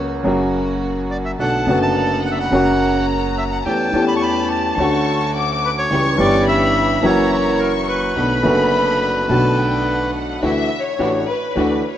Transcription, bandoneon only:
1.11 1.17 D5 medium
1.25 1.31 E5 medium
1.40 1.79 F#5 medium
1.82 2.21 A5 medium
2.26 2.31 F#5 medium
2.32 2.38 E5 medium
2.40 3.06 F#5 medium
3.38 3.44 E5 medium
3.52 3.58 F#5 medium
3.65 4.05 G5 medium
4.08 4.14 B5 medium
4.16 4.22 C#6 medium
4.22 4.48 B5 medium
4.52 5.31 A5 medium
5.65 5.71 B4 medium
5.78 6.17 C#5 medium
6.20 6.46 D5 medium
6.48 7.06 E5 loud
7.05 7.31 C#5 medium
7.32 7.61 C#5 medium
7.60 7.72 A#4 medium
7.88 10.11 B4 medium

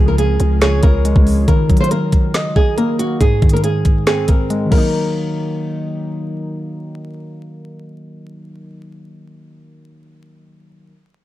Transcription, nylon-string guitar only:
0.08 0.17 A#4 medium
0.19 0.59 G#4 medium
0.62 0.80 G#4 loud
0.83 1.44 A#4 medium
1.48 1.78 A#4 medium
1.80 1.89 C5 medium
1.91 2.32 A#4 medium
2.56 2.74 G#4 medium
2.77 2.96 A#4 medium
2.99 3.17 F#4 medium
3.21 3.51 G#4 loud
3.53 3.62 A#4 medium
3.64 4.04 G#4 medium
4.07 4.25 G#4 medium
4.29 4.69 A#4 medium
4.72 6.19 A#4 medium

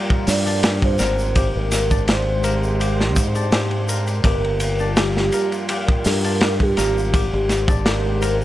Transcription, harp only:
0.00 0.46 D4 medium
0.00 0.63 G4 medium
0.00 0.99 A#4 medium
0.46 1.90 D4 medium
0.63 1.35 G4 medium
0.99 2.43 A#4 medium
1.35 2.07 G4 medium
1.90 3.35 D4 medium
2.08 2.80 G4 medium
2.44 3.88 A#4 medium
2.80 3.52 G4 medium
3.35 4.79 D4 medium
3.52 4.24 G4 medium
3.88 5.33 A#4 medium
4.24 4.96 G4 medium
4.80 6.24 D4 medium
4.97 5.69 G4 medium
5.33 6.76 A#4 medium
5.70 6.41 G4 medium
6.24 7.68 D4 medium
6.41 7.13 G4 medium
6.77 8.21 A#4 medium
7.13 7.85 G4 medium
7.69 8.44 D4 medium
7.85 8.44 G4 medium
8.22 8.44 A#4 medium

